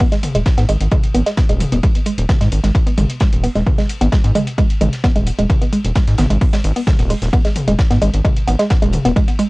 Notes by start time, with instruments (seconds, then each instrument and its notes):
0.00 synth arpeggio sound B3, kick, closed hi-hat, ride
0.12 synth arpeggio sound G#3, snare, closed hi-hat
0.23 open hi-hat, mid tom, ride
0.35 analog synth bass D#1, synth arpeggio sound G#3, closed hi-hat, ride
0.46 kick, snare, closed hi-hat, ride
0.57 analog synth bass G#2, synth arpeggio sound B3, snare, closed hi-hat
0.69 analog synth bass G#1, synth arpeggio sound G#3, open hi-hat, ride
0.81 analog synth bass G#1, closed hi-hat
0.91 synth arpeggio sound G#3, kick, closed hi-hat, mid tom, ride
1.04 closed hi-hat
1.14 analog synth bass G#1, synth arpeggio sound B3, open hi-hat, ride
1.26 synth arpeggio sound G#3, snare, closed hi-hat
1.37 kick, snare, closed hi-hat, ride
1.49 analog synth bass D#1, synth arpeggio sound G#3, closed hi-hat
1.60 open hi-hat, mid tom, ride
1.72 analog synth bass D#1, synth arpeggio sound B3, closed hi-hat
1.83 synth arpeggio sound G#3, kick, closed hi-hat, ride
1.95 closed hi-hat
2.06 synth arpeggio sound G#3, open hi-hat, ride
2.18 analog synth bass D#1, closed hi-hat
2.29 synth arpeggio sound B3, kick, snare, closed hi-hat, mid tom, ride
2.41 analog synth bass G#2, synth arpeggio sound G#3, snare, closed hi-hat
2.52 analog synth bass G#1, open hi-hat, ride
2.63 analog synth bass G#1, synth arpeggio sound G#3, snare, closed hi-hat
2.75 kick, closed hi-hat, ride
2.87 synth arpeggio sound B3, closed hi-hat, ride
2.97 analog synth bass G#1, synth arpeggio sound G#3, open hi-hat, mid tom, ride
3.10 closed hi-hat
3.20 synth arpeggio sound G#3, kick, snare, closed hi-hat, ride
3.33 analog synth bass D#1, closed hi-hat
3.43 synth arpeggio sound B3, open hi-hat
3.55 analog synth bass D#1, synth arpeggio sound G#3, snare, open hi-hat
3.66 kick, closed hi-hat, mid tom, ride
3.78 synth arpeggio sound G#3, snare, closed hi-hat
3.89 open hi-hat, ride
4.01 analog synth bass G#1, synth arpeggio sound B3, closed hi-hat, ride
4.12 synth arpeggio sound G#3, kick, snare, closed hi-hat, ride
4.24 analog synth bass G#2, closed hi-hat
4.35 synth arpeggio sound G#3, open hi-hat, mid tom, ride
4.47 closed hi-hat
4.58 synth arpeggio sound G#3, kick, closed hi-hat, ride
4.70 closed hi-hat
4.81 analog synth bass G#1, synth arpeggio sound G#3, open hi-hat, mid tom, ride
4.93 snare, closed hi-hat
5.04 synth arpeggio sound B3, kick, snare, closed hi-hat, ride
5.16 analog synth bass D#1, synth arpeggio sound G#3, closed hi-hat
5.27 open hi-hat, ride
5.39 analog synth bass D#1, synth arpeggio sound G#3, closed hi-hat
5.50 kick, closed hi-hat, mid tom, ride
5.62 synth arpeggio sound B3, closed hi-hat
5.73 synth arpeggio sound G#3, open hi-hat, ride
5.84 analog synth bass D#1, closed hi-hat
5.95 synth arpeggio sound G#3, kick, snare, closed hi-hat, ride
6.07 analog synth bass G#2, snare, closed hi-hat
6.18 analog synth bass G#1, synth arpeggio sound B3, snare, open hi-hat, mid tom, ride
6.30 analog synth bass G#1, synth arpeggio sound G#3, closed hi-hat
6.41 kick, closed hi-hat, open hi-hat
6.53 synth arpeggio sound G#3, snare, closed hi-hat, ride
6.64 analog synth bass G#1, open hi-hat
6.76 synth arpeggio sound B3, closed hi-hat, open hi-hat
6.87 synth arpeggio sound G#3, kick, snare, closed hi-hat, mid tom, ride
6.99 analog synth bass D#1, closed hi-hat
7.10 synth arpeggio sound G#3, open hi-hat
7.22 analog synth bass D#1, snare, open hi-hat
7.33 synth arpeggio sound B3, kick, closed hi-hat, ride
7.45 synth arpeggio sound G#3, snare, closed hi-hat
7.55 open hi-hat, mid tom, ride
7.67 analog synth bass D#1, synth arpeggio sound G#3, closed hi-hat, ride
7.79 kick, snare, closed hi-hat, ride
7.90 analog synth bass G#2, synth arpeggio sound B3, snare, closed hi-hat
8.02 analog synth bass G#1, synth arpeggio sound G#3, open hi-hat, ride
8.13 analog synth bass G#1, closed hi-hat
8.24 synth arpeggio sound G#3, kick, closed hi-hat, mid tom, ride
8.36 closed hi-hat
8.47 analog synth bass G#1, synth arpeggio sound B3, open hi-hat, ride
8.59 synth arpeggio sound G#3, snare, closed hi-hat
8.70 kick, snare, closed hi-hat, ride
8.82 analog synth bass D#1, synth arpeggio sound G#3, closed hi-hat
8.93 open hi-hat, mid tom, ride
9.05 analog synth bass D#1, synth arpeggio sound B3, closed hi-hat
9.16 synth arpeggio sound G#3, kick, closed hi-hat, ride
9.28 closed hi-hat
9.39 synth arpeggio sound G#3, open hi-hat, ride